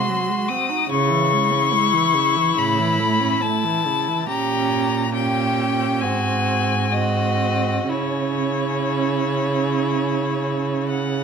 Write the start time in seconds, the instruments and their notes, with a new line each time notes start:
Already playing: viola G#3, violin F#4 C6
0.09 viola F#3
0.29 viola G#3
0.48 viola C4, violin D#6
0.69 viola D#4
0.90 cello C#3, viola C#3, violin E4 C#6
1.10 viola E3
1.32 viola G#3
1.52 viola C#4
1.73 viola G#3
1.93 viola E3
2.15 viola C#3
2.36 viola E3
2.58 cello A2, viola C#3, violin B5
2.79 viola E3
2.99 viola A3
3.21 viola C#4
3.41 viola A3, violin A5
3.64 viola E3
3.87 viola C#3
4.08 viola E3
4.29 cello A#2, viola C#4, violin G4 A#5
5.14 viola C#4, violin G4 G5
6.01 cello G#2, viola C4, violin F#4 G#5
6.91 viola C4, violin F#4 D#5
7.89 cello C#3, viola C#4, violin E4 C#5
10.89 violin F#5